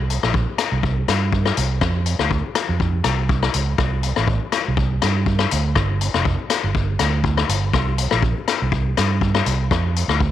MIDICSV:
0, 0, Header, 1, 3, 480
1, 0, Start_track
1, 0, Tempo, 493421
1, 1770, Time_signature, 4, 2, 24, 8
1, 10034, End_track
2, 0, Start_track
2, 0, Title_t, "Fingered electric bass"
2, 0, Program_c, 0, 33
2, 0, Note_on_c, 0, 36, 90
2, 170, Note_off_c, 0, 36, 0
2, 226, Note_on_c, 0, 34, 75
2, 431, Note_off_c, 0, 34, 0
2, 700, Note_on_c, 0, 36, 76
2, 1002, Note_off_c, 0, 36, 0
2, 1051, Note_on_c, 0, 43, 71
2, 1464, Note_off_c, 0, 43, 0
2, 1533, Note_on_c, 0, 36, 79
2, 1738, Note_off_c, 0, 36, 0
2, 1765, Note_on_c, 0, 41, 86
2, 2084, Note_off_c, 0, 41, 0
2, 2131, Note_on_c, 0, 38, 67
2, 2340, Note_off_c, 0, 38, 0
2, 2617, Note_on_c, 0, 41, 72
2, 2919, Note_off_c, 0, 41, 0
2, 2964, Note_on_c, 0, 36, 82
2, 3378, Note_off_c, 0, 36, 0
2, 3450, Note_on_c, 0, 37, 80
2, 3655, Note_off_c, 0, 37, 0
2, 3681, Note_on_c, 0, 36, 81
2, 4001, Note_off_c, 0, 36, 0
2, 4060, Note_on_c, 0, 33, 69
2, 4264, Note_off_c, 0, 33, 0
2, 4555, Note_on_c, 0, 36, 74
2, 4849, Note_off_c, 0, 36, 0
2, 4892, Note_on_c, 0, 43, 81
2, 5303, Note_off_c, 0, 43, 0
2, 5373, Note_on_c, 0, 38, 78
2, 5576, Note_off_c, 0, 38, 0
2, 5600, Note_on_c, 0, 31, 91
2, 5920, Note_off_c, 0, 31, 0
2, 5975, Note_on_c, 0, 29, 67
2, 6181, Note_off_c, 0, 29, 0
2, 6459, Note_on_c, 0, 31, 75
2, 6760, Note_off_c, 0, 31, 0
2, 6808, Note_on_c, 0, 38, 85
2, 7222, Note_off_c, 0, 38, 0
2, 7287, Note_on_c, 0, 31, 76
2, 7494, Note_off_c, 0, 31, 0
2, 7522, Note_on_c, 0, 36, 86
2, 7842, Note_off_c, 0, 36, 0
2, 7898, Note_on_c, 0, 34, 68
2, 8104, Note_off_c, 0, 34, 0
2, 8386, Note_on_c, 0, 36, 72
2, 8686, Note_off_c, 0, 36, 0
2, 8735, Note_on_c, 0, 43, 85
2, 9147, Note_off_c, 0, 43, 0
2, 9206, Note_on_c, 0, 36, 72
2, 9415, Note_off_c, 0, 36, 0
2, 9446, Note_on_c, 0, 41, 79
2, 9766, Note_off_c, 0, 41, 0
2, 9808, Note_on_c, 0, 38, 70
2, 10020, Note_off_c, 0, 38, 0
2, 10034, End_track
3, 0, Start_track
3, 0, Title_t, "Drums"
3, 97, Note_on_c, 9, 42, 38
3, 194, Note_off_c, 9, 42, 0
3, 226, Note_on_c, 9, 37, 59
3, 323, Note_off_c, 9, 37, 0
3, 332, Note_on_c, 9, 36, 84
3, 430, Note_off_c, 9, 36, 0
3, 568, Note_on_c, 9, 37, 66
3, 568, Note_on_c, 9, 42, 47
3, 665, Note_off_c, 9, 37, 0
3, 665, Note_off_c, 9, 42, 0
3, 810, Note_on_c, 9, 36, 75
3, 908, Note_off_c, 9, 36, 0
3, 1053, Note_on_c, 9, 37, 64
3, 1053, Note_on_c, 9, 42, 41
3, 1151, Note_off_c, 9, 37, 0
3, 1151, Note_off_c, 9, 42, 0
3, 1289, Note_on_c, 9, 36, 71
3, 1387, Note_off_c, 9, 36, 0
3, 1415, Note_on_c, 9, 37, 59
3, 1513, Note_off_c, 9, 37, 0
3, 1527, Note_on_c, 9, 42, 43
3, 1625, Note_off_c, 9, 42, 0
3, 1763, Note_on_c, 9, 37, 67
3, 1766, Note_on_c, 9, 36, 89
3, 1860, Note_off_c, 9, 37, 0
3, 1863, Note_off_c, 9, 36, 0
3, 2002, Note_on_c, 9, 42, 40
3, 2099, Note_off_c, 9, 42, 0
3, 2133, Note_on_c, 9, 37, 56
3, 2230, Note_off_c, 9, 37, 0
3, 2245, Note_on_c, 9, 36, 74
3, 2342, Note_off_c, 9, 36, 0
3, 2483, Note_on_c, 9, 37, 71
3, 2483, Note_on_c, 9, 42, 51
3, 2580, Note_off_c, 9, 37, 0
3, 2580, Note_off_c, 9, 42, 0
3, 2724, Note_on_c, 9, 36, 71
3, 2821, Note_off_c, 9, 36, 0
3, 2958, Note_on_c, 9, 37, 61
3, 2958, Note_on_c, 9, 42, 49
3, 3055, Note_off_c, 9, 37, 0
3, 3055, Note_off_c, 9, 42, 0
3, 3204, Note_on_c, 9, 36, 80
3, 3301, Note_off_c, 9, 36, 0
3, 3333, Note_on_c, 9, 37, 62
3, 3430, Note_off_c, 9, 37, 0
3, 3441, Note_on_c, 9, 42, 47
3, 3538, Note_off_c, 9, 42, 0
3, 3680, Note_on_c, 9, 37, 67
3, 3681, Note_on_c, 9, 36, 84
3, 3777, Note_off_c, 9, 37, 0
3, 3778, Note_off_c, 9, 36, 0
3, 3920, Note_on_c, 9, 42, 38
3, 4017, Note_off_c, 9, 42, 0
3, 4049, Note_on_c, 9, 37, 57
3, 4146, Note_off_c, 9, 37, 0
3, 4159, Note_on_c, 9, 36, 78
3, 4257, Note_off_c, 9, 36, 0
3, 4399, Note_on_c, 9, 37, 60
3, 4399, Note_on_c, 9, 42, 46
3, 4496, Note_off_c, 9, 37, 0
3, 4496, Note_off_c, 9, 42, 0
3, 4642, Note_on_c, 9, 36, 76
3, 4739, Note_off_c, 9, 36, 0
3, 4882, Note_on_c, 9, 37, 65
3, 4882, Note_on_c, 9, 42, 42
3, 4980, Note_off_c, 9, 37, 0
3, 4980, Note_off_c, 9, 42, 0
3, 5120, Note_on_c, 9, 36, 72
3, 5217, Note_off_c, 9, 36, 0
3, 5242, Note_on_c, 9, 37, 60
3, 5339, Note_off_c, 9, 37, 0
3, 5362, Note_on_c, 9, 42, 48
3, 5459, Note_off_c, 9, 42, 0
3, 5598, Note_on_c, 9, 37, 68
3, 5602, Note_on_c, 9, 36, 91
3, 5696, Note_off_c, 9, 37, 0
3, 5699, Note_off_c, 9, 36, 0
3, 5845, Note_on_c, 9, 42, 43
3, 5943, Note_off_c, 9, 42, 0
3, 5975, Note_on_c, 9, 37, 65
3, 6072, Note_off_c, 9, 37, 0
3, 6083, Note_on_c, 9, 36, 85
3, 6180, Note_off_c, 9, 36, 0
3, 6323, Note_on_c, 9, 37, 67
3, 6323, Note_on_c, 9, 42, 50
3, 6420, Note_off_c, 9, 37, 0
3, 6420, Note_off_c, 9, 42, 0
3, 6564, Note_on_c, 9, 36, 71
3, 6662, Note_off_c, 9, 36, 0
3, 6802, Note_on_c, 9, 37, 58
3, 6802, Note_on_c, 9, 42, 43
3, 6899, Note_off_c, 9, 37, 0
3, 6899, Note_off_c, 9, 42, 0
3, 7042, Note_on_c, 9, 36, 82
3, 7139, Note_off_c, 9, 36, 0
3, 7174, Note_on_c, 9, 37, 62
3, 7271, Note_off_c, 9, 37, 0
3, 7290, Note_on_c, 9, 42, 50
3, 7387, Note_off_c, 9, 42, 0
3, 7525, Note_on_c, 9, 36, 84
3, 7528, Note_on_c, 9, 37, 72
3, 7622, Note_off_c, 9, 36, 0
3, 7625, Note_off_c, 9, 37, 0
3, 7764, Note_on_c, 9, 42, 45
3, 7861, Note_off_c, 9, 42, 0
3, 7888, Note_on_c, 9, 37, 60
3, 7986, Note_off_c, 9, 37, 0
3, 8001, Note_on_c, 9, 36, 86
3, 8098, Note_off_c, 9, 36, 0
3, 8246, Note_on_c, 9, 37, 60
3, 8246, Note_on_c, 9, 42, 49
3, 8343, Note_off_c, 9, 37, 0
3, 8343, Note_off_c, 9, 42, 0
3, 8483, Note_on_c, 9, 36, 79
3, 8580, Note_off_c, 9, 36, 0
3, 8729, Note_on_c, 9, 37, 60
3, 8729, Note_on_c, 9, 42, 43
3, 8826, Note_off_c, 9, 37, 0
3, 8826, Note_off_c, 9, 42, 0
3, 8963, Note_on_c, 9, 36, 67
3, 9060, Note_off_c, 9, 36, 0
3, 9092, Note_on_c, 9, 37, 63
3, 9189, Note_off_c, 9, 37, 0
3, 9204, Note_on_c, 9, 42, 42
3, 9302, Note_off_c, 9, 42, 0
3, 9446, Note_on_c, 9, 36, 86
3, 9455, Note_on_c, 9, 37, 67
3, 9544, Note_off_c, 9, 36, 0
3, 9552, Note_off_c, 9, 37, 0
3, 9693, Note_on_c, 9, 42, 35
3, 9790, Note_off_c, 9, 42, 0
3, 9817, Note_on_c, 9, 37, 57
3, 9915, Note_off_c, 9, 37, 0
3, 9927, Note_on_c, 9, 36, 75
3, 10024, Note_off_c, 9, 36, 0
3, 10034, End_track
0, 0, End_of_file